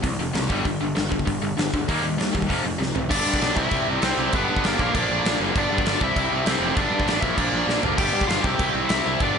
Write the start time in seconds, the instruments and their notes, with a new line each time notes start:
0.02 picked electric bass C2, distorted electric guitar F2 C3, kick, open hi-hat
0.19 picked electric bass F1, distorted electric guitar F2 C3
0.33 picked electric bass C2, distorted electric guitar F2 C3, snare, open hi-hat
0.49 picked electric bass G1, distorted electric guitar G2 D3 G3, kick
0.65 picked electric bass G1, distorted electric guitar G2 D3, kick, open hi-hat
0.81 picked electric bass G1, distorted electric guitar G2 D3
0.95 picked electric bass G1, distorted electric guitar G2 D3, snare, open hi-hat
1.09 distorted electric guitar G2 D3, kick
1.19 kick
1.25 picked electric bass G1, distorted electric guitar G2 D3, kick, open hi-hat
1.42 picked electric bass G1, distorted electric guitar G2 D3
1.57 picked electric bass G1, distorted electric guitar G2 D3, snare, open hi-hat
1.73 picked electric bass D2, distorted electric guitar G2 D3, kick
1.88 picked electric bass D#2, distorted electric guitar D#3 G3 A#3, kick, open hi-hat
2.03 picked electric bass D#2, distorted electric guitar D#3 G3
2.17 picked electric bass D#2, distorted electric guitar D#3 G3, snare, open hi-hat
2.33 picked electric bass D#2, distorted electric guitar D#3 G3, kick
2.42 kick
2.48 picked electric bass F1, distorted electric guitar F2 C3 F3, kick, open hi-hat
2.63 picked electric bass F1, distorted electric guitar F2 C3
2.78 picked electric bass C2, distorted electric guitar F2 C3, snare
2.95 picked electric bass A1, distorted electric guitar F2 C3, floor tom
3.09 picked electric bass G1, distorted electric guitar G2 D3 G3 B3 D4, overdriven electric guitar D4 D5, kick, crash
3.27 picked electric bass G2
3.34 kick
3.39 picked electric bass B1, distorted electric guitar G2 D3 G3 B3 D4, overdriven electric guitar D4 D5, snare, crash
3.55 picked electric bass C2, distorted electric guitar C3 G3 C4 E4, overdriven electric guitar E4 E5, kick
3.69 picked electric bass C2, distorted electric guitar C3 G3 C4 E4, kick, crash
3.89 picked electric bass C2
4.00 picked electric bass C2, distorted electric guitar C3 G3 C4 E4, overdriven electric guitar C5, snare, crash
4.05 overdriven electric guitar C4
4.17 picked electric bass C2, distorted electric guitar C3 G3 C4 E4
4.32 picked electric bass G1, distorted electric guitar G2 D3 G3 B3 D4, overdriven electric guitar B3 B4, kick, crash
4.49 picked electric bass G2
4.56 kick
4.63 picked electric bass G1, distorted electric guitar G2 D3 G3 B3 D4, overdriven electric guitar A#3 A#4, snare, crash
4.79 picked electric bass A#1, distorted electric guitar A#2 D3 F3 A#3 D4, kick
4.94 picked electric bass A#1, distorted electric guitar A#2 D3 F3 A#3 D4, overdriven electric guitar D4 D5, kick, crash
5.10 picked electric bass A#1
5.25 picked electric bass A#1, distorted electric guitar A#2 D3 F3 A#3 D4, snare, crash
5.39 picked electric bass F#1, distorted electric guitar A#2 D3 F3 A#3 D4
5.55 picked electric bass G1, distorted electric guitar G2 D3 G3 B3 D4, overdriven electric guitar D4 D5, kick, crash
5.71 picked electric bass G2
5.78 kick
5.85 picked electric bass G1, distorted electric guitar G2 D3 G3 B3 D4, overdriven electric guitar D5, snare, crash
5.89 overdriven electric guitar D4
5.99 picked electric bass C2, distorted electric guitar C3 G3 C4 E4, kick
6.04 overdriven electric guitar E4 E5
6.16 picked electric bass C2, distorted electric guitar C3 G3 C4 E4, kick, crash
6.32 picked electric bass C2
6.45 picked electric bass C2, distorted electric guitar C3 G3 C4 E4, overdriven electric guitar C4 C5, snare, crash
6.60 picked electric bass F1, distorted electric guitar C3 G3 C4 E4
6.74 picked electric bass G1, distorted electric guitar G2 D3 G3 B3 D4, overdriven electric guitar D4 D5, kick, crash
6.91 picked electric bass G2
7.00 kick
7.06 picked electric bass A1, distorted electric guitar G2 D3 G3 B3 D4, snare, crash
7.20 picked electric bass A#1, distorted electric guitar A#2 D3 F3 A#3 D4, overdriven electric guitar E4 E5, kick
7.37 picked electric bass A#1, distorted electric guitar A#2 D3 F3 A#3 D4, overdriven electric guitar D4 D5, kick, crash
7.53 picked electric bass A#1
7.66 picked electric bass A#1, distorted electric guitar A#2 D3 F3 A#3 D4, snare
7.83 picked electric bass F#1, distorted electric guitar A#2 D3 F3 A#3 D4, floor tom
7.97 picked electric bass G1, distorted electric guitar G2 D3 G3 B3 D4, overdriven electric guitar G4 G5, kick, crash
8.12 picked electric bass G2
8.21 kick
8.27 picked electric bass G1, distorted electric guitar G2 D3 G3 D4, overdriven electric guitar F4 F5, snare, crash
8.31 distorted electric guitar B3
8.42 picked electric bass C2, distorted electric guitar C3 G3 C4, overdriven electric guitar G4 G5, kick
8.46 distorted electric guitar E4
8.59 picked electric bass C2, distorted electric guitar C3 G3 C4 E4, kick, crash
8.74 picked electric bass C2
8.88 picked electric bass C2, distorted electric guitar C4 E4, overdriven electric guitar E4 E5, snare, crash
8.92 distorted electric guitar C3 G3
9.04 picked electric bass C2, distorted electric guitar C3 G3 C4 E4
9.20 picked electric bass G1, distorted electric guitar G2 D3 G3 B3 D4, overdriven electric guitar D4 D5, kick, crash